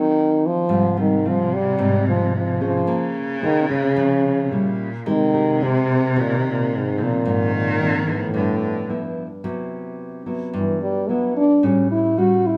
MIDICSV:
0, 0, Header, 1, 4, 480
1, 0, Start_track
1, 0, Tempo, 546946
1, 605, Time_signature, 4, 2, 24, 8
1, 11032, End_track
2, 0, Start_track
2, 0, Title_t, "Nylon-string guitar"
2, 0, Program_c, 0, 24
2, 0, Note_on_c, 0, 51, 69
2, 0, Note_on_c, 0, 54, 51
2, 0, Note_on_c, 0, 60, 57
2, 0, Note_on_c, 0, 65, 53
2, 569, Note_off_c, 0, 54, 0
2, 571, Note_off_c, 0, 60, 0
2, 574, Note_off_c, 0, 65, 0
2, 578, Note_off_c, 0, 51, 0
2, 606, Note_on_c, 0, 44, 68
2, 609, Note_on_c, 0, 55, 51
2, 609, Note_on_c, 0, 60, 56
2, 614, Note_on_c, 0, 65, 60
2, 746, Note_off_c, 0, 55, 0
2, 748, Note_off_c, 0, 60, 0
2, 748, Note_off_c, 0, 65, 0
2, 849, Note_on_c, 0, 55, 55
2, 851, Note_on_c, 0, 60, 58
2, 854, Note_on_c, 0, 65, 75
2, 1048, Note_off_c, 0, 55, 0
2, 1049, Note_off_c, 0, 60, 0
2, 1050, Note_off_c, 0, 65, 0
2, 1094, Note_on_c, 0, 55, 50
2, 1098, Note_on_c, 0, 60, 54
2, 1104, Note_on_c, 0, 65, 58
2, 1530, Note_off_c, 0, 55, 0
2, 1533, Note_off_c, 0, 60, 0
2, 1534, Note_off_c, 0, 65, 0
2, 1540, Note_off_c, 0, 44, 0
2, 1566, Note_on_c, 0, 44, 67
2, 1572, Note_on_c, 0, 55, 54
2, 1572, Note_on_c, 0, 60, 60
2, 1574, Note_on_c, 0, 65, 61
2, 2043, Note_off_c, 0, 60, 0
2, 2044, Note_off_c, 0, 55, 0
2, 2045, Note_off_c, 0, 65, 0
2, 2289, Note_on_c, 0, 61, 65
2, 2292, Note_on_c, 0, 68, 58
2, 2297, Note_on_c, 0, 72, 59
2, 2501, Note_off_c, 0, 44, 0
2, 2521, Note_on_c, 0, 58, 64
2, 2967, Note_off_c, 0, 61, 0
2, 2968, Note_off_c, 0, 68, 0
2, 2971, Note_off_c, 0, 72, 0
2, 3001, Note_on_c, 0, 61, 53
2, 3005, Note_on_c, 0, 68, 53
2, 3010, Note_on_c, 0, 72, 65
2, 3203, Note_off_c, 0, 61, 0
2, 3206, Note_off_c, 0, 68, 0
2, 3206, Note_off_c, 0, 72, 0
2, 3242, Note_on_c, 0, 61, 49
2, 3247, Note_on_c, 0, 68, 58
2, 3250, Note_on_c, 0, 72, 56
2, 3457, Note_off_c, 0, 58, 0
2, 3479, Note_on_c, 0, 53, 62
2, 3923, Note_off_c, 0, 61, 0
2, 3925, Note_off_c, 0, 68, 0
2, 3927, Note_off_c, 0, 72, 0
2, 3936, Note_off_c, 0, 53, 0
2, 3960, Note_on_c, 0, 55, 51
2, 3968, Note_on_c, 0, 61, 50
2, 3972, Note_on_c, 0, 64, 49
2, 4283, Note_off_c, 0, 55, 0
2, 4287, Note_off_c, 0, 61, 0
2, 4289, Note_off_c, 0, 64, 0
2, 4441, Note_on_c, 0, 56, 70
2, 4444, Note_on_c, 0, 60, 49
2, 4445, Note_on_c, 0, 67, 53
2, 4450, Note_on_c, 0, 70, 63
2, 4643, Note_off_c, 0, 60, 0
2, 4645, Note_off_c, 0, 67, 0
2, 4646, Note_off_c, 0, 70, 0
2, 4678, Note_on_c, 0, 60, 61
2, 4683, Note_on_c, 0, 67, 59
2, 4687, Note_on_c, 0, 70, 63
2, 4881, Note_off_c, 0, 60, 0
2, 4882, Note_off_c, 0, 67, 0
2, 4886, Note_off_c, 0, 70, 0
2, 4926, Note_on_c, 0, 60, 54
2, 4930, Note_on_c, 0, 67, 55
2, 4938, Note_on_c, 0, 70, 61
2, 5365, Note_off_c, 0, 60, 0
2, 5366, Note_off_c, 0, 67, 0
2, 5371, Note_off_c, 0, 70, 0
2, 5377, Note_off_c, 0, 56, 0
2, 5409, Note_on_c, 0, 51, 68
2, 5412, Note_on_c, 0, 60, 53
2, 5418, Note_on_c, 0, 67, 51
2, 5420, Note_on_c, 0, 70, 59
2, 5883, Note_off_c, 0, 60, 0
2, 5884, Note_off_c, 0, 67, 0
2, 5887, Note_off_c, 0, 70, 0
2, 6125, Note_on_c, 0, 53, 62
2, 6127, Note_on_c, 0, 58, 62
2, 6129, Note_on_c, 0, 60, 65
2, 6342, Note_off_c, 0, 51, 0
2, 6367, Note_on_c, 0, 44, 72
2, 6805, Note_off_c, 0, 53, 0
2, 6805, Note_off_c, 0, 58, 0
2, 6806, Note_off_c, 0, 60, 0
2, 6843, Note_on_c, 0, 53, 56
2, 6851, Note_on_c, 0, 58, 53
2, 6851, Note_on_c, 0, 60, 66
2, 7044, Note_off_c, 0, 53, 0
2, 7046, Note_off_c, 0, 58, 0
2, 7048, Note_off_c, 0, 60, 0
2, 7081, Note_on_c, 0, 53, 59
2, 7084, Note_on_c, 0, 59, 55
2, 7092, Note_on_c, 0, 64, 60
2, 7300, Note_off_c, 0, 44, 0
2, 7316, Note_on_c, 0, 43, 67
2, 7763, Note_off_c, 0, 53, 0
2, 7765, Note_off_c, 0, 59, 0
2, 7767, Note_off_c, 0, 64, 0
2, 7802, Note_on_c, 0, 53, 50
2, 7809, Note_on_c, 0, 59, 50
2, 7812, Note_on_c, 0, 64, 58
2, 8124, Note_off_c, 0, 53, 0
2, 8128, Note_off_c, 0, 59, 0
2, 8128, Note_off_c, 0, 64, 0
2, 8255, Note_off_c, 0, 43, 0
2, 8284, Note_on_c, 0, 48, 64
2, 8284, Note_on_c, 0, 54, 55
2, 8289, Note_on_c, 0, 59, 45
2, 8294, Note_on_c, 0, 64, 54
2, 8964, Note_off_c, 0, 54, 0
2, 8967, Note_off_c, 0, 59, 0
2, 8968, Note_off_c, 0, 64, 0
2, 9005, Note_on_c, 0, 54, 50
2, 9010, Note_on_c, 0, 59, 53
2, 9014, Note_on_c, 0, 64, 58
2, 9219, Note_off_c, 0, 48, 0
2, 9246, Note_on_c, 0, 43, 71
2, 9685, Note_off_c, 0, 54, 0
2, 9688, Note_off_c, 0, 59, 0
2, 9689, Note_off_c, 0, 64, 0
2, 9733, Note_on_c, 0, 54, 48
2, 9739, Note_on_c, 0, 59, 50
2, 9746, Note_on_c, 0, 64, 57
2, 10036, Note_off_c, 0, 54, 0
2, 10040, Note_off_c, 0, 59, 0
2, 10041, Note_off_c, 0, 64, 0
2, 10180, Note_off_c, 0, 43, 0
2, 10207, Note_on_c, 0, 45, 64
2, 10210, Note_on_c, 0, 55, 52
2, 10214, Note_on_c, 0, 61, 51
2, 10215, Note_on_c, 0, 66, 58
2, 10648, Note_off_c, 0, 55, 0
2, 10650, Note_off_c, 0, 61, 0
2, 10650, Note_off_c, 0, 66, 0
2, 10682, Note_on_c, 0, 55, 50
2, 10687, Note_on_c, 0, 61, 52
2, 10689, Note_on_c, 0, 66, 56
2, 11032, Note_off_c, 0, 45, 0
2, 11032, Note_off_c, 0, 55, 0
2, 11032, Note_off_c, 0, 61, 0
2, 11032, Note_off_c, 0, 66, 0
2, 11032, End_track
3, 0, Start_track
3, 0, Title_t, "French horn"
3, 0, Program_c, 1, 60
3, 0, Note_on_c, 1, 51, 100
3, 408, Note_on_c, 1, 53, 104
3, 421, Note_off_c, 1, 51, 0
3, 866, Note_off_c, 1, 53, 0
3, 881, Note_on_c, 1, 51, 85
3, 1125, Note_on_c, 1, 53, 89
3, 1139, Note_off_c, 1, 51, 0
3, 1352, Note_on_c, 1, 55, 104
3, 1366, Note_off_c, 1, 53, 0
3, 1818, Note_off_c, 1, 55, 0
3, 1827, Note_on_c, 1, 53, 93
3, 2039, Note_off_c, 1, 53, 0
3, 2078, Note_on_c, 1, 53, 82
3, 2285, Note_off_c, 1, 53, 0
3, 2311, Note_on_c, 1, 53, 96
3, 2746, Note_off_c, 1, 53, 0
3, 3010, Note_on_c, 1, 51, 103
3, 3224, Note_off_c, 1, 51, 0
3, 3229, Note_on_c, 1, 49, 98
3, 4160, Note_off_c, 1, 49, 0
3, 4455, Note_on_c, 1, 51, 102
3, 4946, Note_on_c, 1, 48, 103
3, 4959, Note_off_c, 1, 51, 0
3, 5443, Note_on_c, 1, 46, 90
3, 5456, Note_off_c, 1, 48, 0
3, 5602, Note_off_c, 1, 46, 0
3, 5607, Note_on_c, 1, 48, 63
3, 5699, Note_on_c, 1, 46, 88
3, 5712, Note_off_c, 1, 48, 0
3, 5937, Note_on_c, 1, 44, 82
3, 5950, Note_off_c, 1, 46, 0
3, 6171, Note_on_c, 1, 46, 102
3, 6184, Note_off_c, 1, 44, 0
3, 6626, Note_off_c, 1, 46, 0
3, 6633, Note_on_c, 1, 46, 78
3, 6841, Note_off_c, 1, 46, 0
3, 6866, Note_on_c, 1, 46, 75
3, 6968, Note_off_c, 1, 46, 0
3, 7098, Note_on_c, 1, 45, 78
3, 8015, Note_off_c, 1, 45, 0
3, 9276, Note_on_c, 1, 52, 68
3, 9483, Note_off_c, 1, 52, 0
3, 9495, Note_on_c, 1, 55, 84
3, 9740, Note_on_c, 1, 59, 72
3, 9753, Note_off_c, 1, 55, 0
3, 9971, Note_off_c, 1, 59, 0
3, 9976, Note_on_c, 1, 62, 99
3, 10220, Note_on_c, 1, 61, 77
3, 10233, Note_off_c, 1, 62, 0
3, 10451, Note_off_c, 1, 61, 0
3, 10456, Note_on_c, 1, 64, 90
3, 10697, Note_on_c, 1, 66, 97
3, 10710, Note_off_c, 1, 64, 0
3, 10943, Note_on_c, 1, 64, 86
3, 10956, Note_off_c, 1, 66, 0
3, 11032, Note_off_c, 1, 64, 0
3, 11032, End_track
4, 0, Start_track
4, 0, Title_t, "Cello"
4, 0, Program_c, 2, 42
4, 595, Note_on_c, 2, 48, 98
4, 2522, Note_on_c, 2, 49, 106
4, 2535, Note_off_c, 2, 48, 0
4, 3953, Note_on_c, 2, 46, 90
4, 3966, Note_off_c, 2, 49, 0
4, 4452, Note_on_c, 2, 48, 113
4, 4466, Note_off_c, 2, 46, 0
4, 6368, Note_on_c, 2, 51, 122
4, 6381, Note_off_c, 2, 48, 0
4, 7324, Note_off_c, 2, 51, 0
4, 7331, Note_on_c, 2, 50, 85
4, 8011, Note_off_c, 2, 50, 0
4, 11032, End_track
0, 0, End_of_file